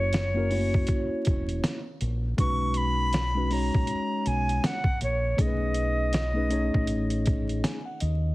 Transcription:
Already playing: fingered electric bass F#1, tine electric piano A#3 C#4 E4 F#4 C#5, flute C#5
0.13 snare, closed hi-hat
0.34 tine electric piano A#3 C#4 E4 F#4 A#4
0.49 tine electric piano A3 C#4 E4 F#4 C#5, open hi-hat
0.56 tine electric piano A#3
0.74 kick
0.87 kick, closed hi-hat
1.25 fingered electric bass E1, kick, closed hi-hat
1.49 closed hi-hat
1.64 snare, closed hi-hat
2.01 fingered electric bass A#1, closed hi-hat
2.37 fingered electric bass B1, tine electric piano G#3 C#4 D#4 F#4 B4, flute C#6, kick, closed hi-hat
2.74 flute B5, closed hi-hat
3.13 snare, closed hi-hat
3.34 tine electric piano G#3 C#4 D#4 F#4 B4
3.50 tine electric piano G#3 C#4 D#4 F#4 C#5, flute A#5, open hi-hat
3.74 fingered electric bass A#1, kick
3.87 closed hi-hat
4.26 fingered electric bass B1, flute G#5, closed hi-hat
4.49 closed hi-hat
4.64 flute F#5, snare, closed hi-hat
4.84 kick
5.01 fingered electric bass A#1, flute C#5, closed hi-hat
5.37 fingered electric bass B1, tine electric piano A3 C#4 D#4 G#4 A4, kick, closed hi-hat
5.41 flute D#5
5.47 tine electric piano B4
5.74 closed hi-hat
6.13 snare, closed hi-hat
6.33 tine electric piano A3 C#4 D#4 G#4 B4
6.49 tine electric piano A3 C#4 D#4 G#4 C#5, closed hi-hat
6.74 fingered electric bass A1, kick
6.87 closed hi-hat
7.10 closed hi-hat
7.26 kick, closed hi-hat
7.49 closed hi-hat
7.64 tine electric piano G#5, snare, closed hi-hat
7.85 tine electric piano F#5
8.00 fingered electric bass D#2, tine electric piano D#5, closed hi-hat

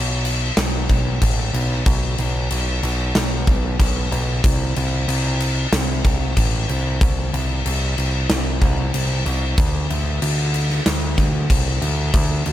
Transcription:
Already playing: picked electric bass B1
0.25 crash
0.57 picked electric bass B1, snare, crash
0.89 picked electric bass B1, kick, crash
1.22 picked electric bass A1, kick, crash
1.53 picked electric bass B1, crash
1.86 picked electric bass B1, kick, crash
2.18 picked electric bass B1, crash
2.51 picked electric bass B1, crash
2.83 picked electric bass B1, crash
3.15 picked electric bass B1, snare, crash
3.47 picked electric bass B1, kick, crash
3.79 picked electric bass B1, kick, crash
4.12 picked electric bass B1, crash
4.44 picked electric bass C2, kick, crash
4.76 picked electric bass C2, crash
5.08 picked electric bass C2, crash
5.40 crash
5.72 picked electric bass C2, snare, crash
6.05 picked electric bass C2, kick, crash
6.37 picked electric bass A1, kick, crash
6.69 picked electric bass C2, crash
7.01 picked electric bass C2, kick, crash
7.33 picked electric bass C2, crash
7.66 picked electric bass C2, crash
7.98 picked electric bass C2, crash
8.29 picked electric bass C2, snare, crash
8.62 picked electric bass C2, kick, crash
8.94 picked electric bass C2, crash
9.26 picked electric bass C2, crash
9.58 picked electric bass D2, kick, crash
9.90 picked electric bass D2, crash
10.22 picked electric bass D2, crash
10.54 crash
10.70 snare
10.86 picked electric bass D2, snare, crash
11.18 picked electric bass D2, kick, crash
11.50 picked electric bass C2, kick, crash
11.82 picked electric bass D2, crash
12.14 picked electric bass D2, kick, crash
12.46 picked electric bass D2, crash

